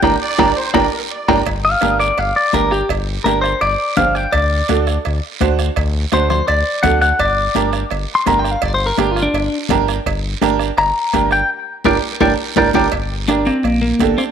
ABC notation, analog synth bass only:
X:1
M:4/4
L:1/8
Q:1/4=168
K:Gm
V:1 name="Analog synth bass" clef=bass
G,,, z G,,, z G,,, z2 G,,, | G,,,2 G,,,2 G,,, z G,,,2 | G,,,2 G,,,2 G,,, z G,,,2 | D,,2 D,,2 D,, z D,,2 |
D,,2 D,,2 D,, z D,,2 | G,,,2 G,,,2 G,,, z G,,,2 | G,,,2 G,,,2 G,,, z G,,,2 | G,,,2 G,,,2 G,,, z G,,,2 |
z2 G,,, z G,,, z G,,, G,,, | G,,,4 B,,,2 G,,, z |]